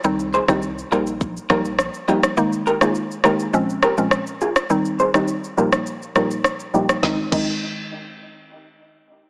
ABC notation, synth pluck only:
X:1
M:4/4
L:1/16
Q:1/4=103
K:Ab
V:1 name="Synth pluck" clef=bass
[E,G,CE]3 [E,G,CE] z2 [F,G,B,E]2 z2 [F,G,B,E]2 z2 [F,G,B,E]2 | [E,A,B,E]3 [E,A,B,E] z2 [E,A,B,E]2 [B,,F,A,CD]2 z [B,,F,A,CD] z4 | [E,G,CE]3 [E,G,CE] z2 [B,,F,G,B,E]2 z2 [B,,F,G,B,E]2 z2 [B,,F,G,B,E]2 | [E,A,CE] z [E,A,CE]12- [E,A,CE]2 |]